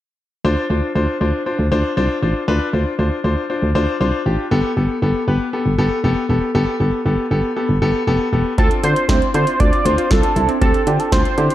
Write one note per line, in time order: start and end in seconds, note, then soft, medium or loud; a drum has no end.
0.45 0.55 D2 loud
0.45 0.64 D4 loud
0.45 0.64 F4 medium
0.45 0.64 C5 loud
0.70 0.81 D2 medium
0.70 0.89 D4 medium
0.70 0.89 F4 medium
0.70 0.89 C5 medium
0.95 1.06 D2 loud
0.95 1.15 D4 medium
0.95 1.15 F4 medium
0.95 1.15 C5 medium
1.21 1.32 D2 medium
1.21 1.40 D4 medium
1.21 1.40 F4 medium
1.21 1.40 C5 medium
1.46 1.65 D4 medium
1.46 1.65 F4 medium
1.46 1.65 C5 medium
1.59 1.70 D2 medium
1.72 1.83 D2 medium
1.72 1.91 D4 loud
1.72 1.91 F4 medium
1.72 1.91 C5 loud
1.97 2.08 C2 medium
1.97 2.16 D4 loud
1.97 2.16 F4 medium
1.97 2.16 C5 loud
2.23 2.33 A1 medium
2.23 2.42 D4 medium
2.23 2.42 F4 medium
2.23 2.42 C5 medium
2.48 2.59 D2 loud
2.48 2.67 D4 loud
2.48 2.67 F4 medium
2.48 2.67 B4 loud
2.73 2.84 D2 loud
2.73 2.93 D4 medium
2.73 2.93 F4 medium
2.73 2.93 C5 medium
2.99 3.10 D2 loud
2.99 3.18 D4 medium
2.99 3.18 F4 medium
2.99 3.18 C5 medium
3.24 3.35 D2 loud
3.24 3.43 D4 medium
3.24 3.43 F4 medium
3.24 3.43 C5 medium
3.50 3.69 D4 medium
3.50 3.69 F4 medium
3.50 3.69 C5 medium
3.62 3.73 D2 medium
3.75 3.86 D2 medium
3.75 3.94 D4 loud
3.75 3.94 F4 medium
3.75 3.94 C5 loud
4.01 4.11 C2 medium
4.01 4.20 D4 medium
4.01 4.20 F4 medium
4.01 4.20 C5 loud
4.26 4.37 A1 medium
4.26 4.45 D4 medium
4.26 4.45 F4 medium
4.26 4.45 G4 medium
4.51 4.62 G1 loud
4.51 4.71 B3 loud
4.51 4.70 G4 medium
4.51 4.70 A4 loud
4.77 4.88 G1 medium
4.77 4.96 B3 medium
4.77 4.96 G4 medium
4.77 4.96 A4 medium
5.02 5.13 G1 loud
5.02 5.21 B3 medium
5.02 5.21 G4 medium
5.02 5.21 A4 medium
5.28 5.39 G1 loud
5.28 5.47 B3 medium
5.28 5.47 G4 medium
5.28 5.47 B4 medium
5.53 5.72 B3 medium
5.53 5.72 G4 medium
5.53 5.72 A4 medium
5.66 5.77 G1 medium
5.78 5.89 G1 medium
5.78 5.98 B3 loud
5.78 5.98 G4 medium
5.78 5.98 A4 loud
6.04 6.15 F1 loud
6.04 6.23 B3 loud
6.04 6.23 G4 medium
6.04 6.23 A4 loud
6.29 6.40 E1 medium
6.29 6.49 B3 medium
6.29 6.49 G4 medium
6.29 6.49 A4 medium
6.55 6.66 G1 loud
6.55 6.74 B3 loud
6.55 6.74 G4 medium
6.55 6.74 A4 loud
6.80 6.91 G1 loud
6.80 6.99 B3 medium
6.80 6.99 G4 medium
6.80 6.99 A4 medium
7.06 7.16 G1 loud
7.06 7.25 B3 medium
7.06 7.25 G4 medium
7.06 7.25 A4 medium
7.31 7.42 G1 medium
7.31 7.50 B3 medium
7.31 7.50 G4 medium
7.31 7.50 A4 medium
7.56 7.76 B3 medium
7.56 7.76 G4 medium
7.56 7.76 A4 medium
7.69 7.80 G1 medium
7.82 7.93 G1 loud
7.82 8.01 B3 loud
7.82 8.01 G4 medium
7.82 8.01 A4 loud
8.07 8.18 F1 medium
8.07 8.26 B3 loud
8.07 8.26 G4 medium
8.07 8.26 A4 loud
8.33 8.44 E1 medium
8.33 8.52 B3 medium
8.33 8.52 G4 medium
8.33 8.52 A4 medium
8.58 8.69 D2 loud
8.58 8.77 C4 medium
8.58 8.77 D4 medium
8.58 8.77 F4 loud
8.58 8.70 A4 loud
8.58 kick loud
8.58 closed hi-hat medium
8.71 closed hi-hat medium
8.84 8.94 D3 medium
8.84 9.03 C4 medium
8.84 9.03 D4 medium
8.84 9.03 F4 medium
8.84 9.31 C5 loud
8.84 closed hi-hat medium
8.96 closed hi-hat medium
9.09 9.20 D2 loud
9.09 9.28 C4 medium
9.09 9.28 D4 medium
9.09 9.28 E4 medium
9.09 kick loud
9.09 snare loud
9.09 closed hi-hat medium
9.22 closed hi-hat soft
9.34 9.45 D3 loud
9.34 9.54 C4 medium
9.34 9.54 D4 medium
9.34 9.54 E4 medium
9.34 9.54 F4 medium
9.34 9.61 C5 loud
9.34 closed hi-hat medium
9.47 closed hi-hat medium
9.60 9.71 D2 loud
9.60 9.79 C4 medium
9.60 9.69 D4 medium
9.60 9.79 D4 medium
9.60 9.79 F4 medium
9.60 9.87 D5 loud
9.60 kick loud
9.60 closed hi-hat medium
9.73 9.92 F4 medium
9.73 closed hi-hat soft
9.85 9.96 D2 loud
9.85 10.04 C4 medium
9.85 10.04 D4 medium
9.85 10.04 F4 loud
9.85 10.12 C5 loud
9.85 closed hi-hat medium
9.98 10.17 F4 medium
9.98 closed hi-hat medium
10.11 10.22 C2 medium
10.11 10.30 C4 medium
10.11 10.30 D4 medium
10.11 10.30 F4 loud
10.11 10.49 A4 loud
10.11 kick loud
10.11 snare loud
10.11 closed hi-hat medium
10.23 10.43 D4 medium
10.23 closed hi-hat medium
10.36 10.47 C2 medium
10.36 10.55 C4 medium
10.36 10.55 D4 medium
10.36 10.55 E4 medium
10.36 closed hi-hat medium
10.49 10.58 C4 medium
10.49 closed hi-hat soft
10.61 10.72 D2 loud
10.61 10.81 C4 medium
10.61 10.81 D4 medium
10.61 10.81 G4 loud
10.61 10.88 A4 loud
10.61 kick loud
10.61 closed hi-hat medium
10.74 closed hi-hat medium
10.87 10.98 D3 loud
10.87 11.06 C4 medium
10.87 11.06 D4 medium
10.87 11.06 F4 medium
10.87 11.01 G4 medium
10.87 closed hi-hat medium
11.00 11.12 A4 medium
11.00 closed hi-hat medium
11.12 11.23 D2 loud
11.12 11.31 C4 medium
11.12 11.32 D4 medium
11.12 11.32 F4 medium
11.12 11.55 C5 loud
11.12 kick loud
11.12 snare loud
11.12 closed hi-hat medium
11.25 closed hi-hat soft
11.38 11.49 D3 loud
11.38 11.55 C4 medium
11.38 11.55 D4 medium
11.38 11.55 E4 medium
11.38 11.55 G4 medium
11.38 closed hi-hat medium
11.50 closed hi-hat medium